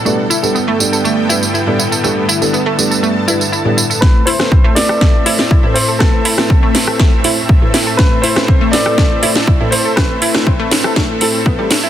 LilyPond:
<<
  \new Staff \with { instrumentName = "Grand piano" } { \time 4/4 \key a \minor \tempo 4 = 121 r1 | r1 | b'8 c''4 d''2 c''8 | a'2 r2 |
b'8 c''4 d''2 c''8 | b'2 r2 | }
  \new Staff \with { instrumentName = "Synth pluck" } { \time 4/4 \key a \minor a16 r16 e'16 r16 b16 a16 r16 a'16 a16 r16 e'16 r16 e'16 a,16 e'16 a'16 | a16 r16 e'16 r16 b16 a16 r16 a'16 a16 r16 e'16 r16 e'16 a,16 e'16 a'16 | a16 r16 e'16 r16 c'16 a16 r16 a'16 a16 r16 e'16 r16 e'16 a,16 e'16 a'16 | a16 r16 e'16 r16 c'16 a16 r16 a'16 a16 r16 e'16 r16 e'16 a,16 e'16 a'16 |
a16 r16 e'16 r16 c'16 a16 r16 a'16 a16 r16 e'16 r16 e'16 a,16 e'16 a'16 | a16 r16 e'16 r16 c'16 a16 r16 a'16 a16 r16 a'16 r16 b16 g16 r16 e'16 | }
  \new Staff \with { instrumentName = "Felt piano" } { \time 4/4 \key a \minor <g b d' a'>16 r8 <g b d' a'>16 r8 <g b d' a'>4 <g b d' b'>16 r8 <g b d' a'>16 r8 | <g b d' a'>16 r8 <g b d' a'>16 r8 <g b d' a'>4 <g b d' b'>16 r8 <g b d' a'>16 r8 | <a c' e' b'>16 r8 <a c' e' b'>16 r8 <a c' e' b'>4 <a c' e' c''>16 r8 <a c' e' b'>16 r8 | <a c' e' b'>16 r8 <a c' e' b'>16 r8 <a c' e' b'>4 <a c' e' c''>16 r8 <a c' e' b'>16 r8 |
<a c' e' b'>16 r8 <a c' e' b'>16 r8 <a c' e' b'>4 <a c' e' c''>16 r8 <a c' e' b'>16 r8 | <a c' e' b'>16 r8 <a c' e' b'>16 r8 <a c' e' b'>4 <a c' e' a'>16 r8 <a c' e' a'>16 r8 | }
  \new Staff \with { instrumentName = "Supersaw synth" } { \time 4/4 \key a \minor << { g''1 | a''1 | e''1~ | e''1~ |
e''1~ | e''1 | } \\ { <g, d b a'>1~ | <g, d b a'>1 | <a, a c' a'>1~ | <a, a c' a'>1~ |
<a, a c' a'>1~ | <a, a c' a'>1 | } >> }
  \new DrumStaff \with { instrumentName = "Drums" } \drummode { \time 4/4 tamb8 tamb16 tamb16 tamb8 tamb16 tamb16 tamb8 tamb16 tamb16 tamb8 tamb16 tamb16 | tamb8 tamb16 tamb16 tamb8 tamb16 tamb16 tamb8 tamb16 tamb16 tamb8 tamb16 tamb16 | <bd sn>8 hho16 <ss sn>16 bd8 <hho sn>16 ss16 <bd sn>8 hho16 sn16 bd8 hho8 | <bd ss sn>8 hho16 <ss sn>16 bd8 <hho sn>16 ss16 <bd sn>8 hho8 bd8 <hho sn>8 |
<bd sn>8 hho16 <ss sn>16 bd8 <hho sn>16 ss16 <bd sn>8 hho16 sn16 bd8 hho8 | <bd ss sn>8 hho16 <ss sn>16 bd8 <hho sn>16 ss16 <bd sn>8 hho8 bd8 <hho sn>8 | }
>>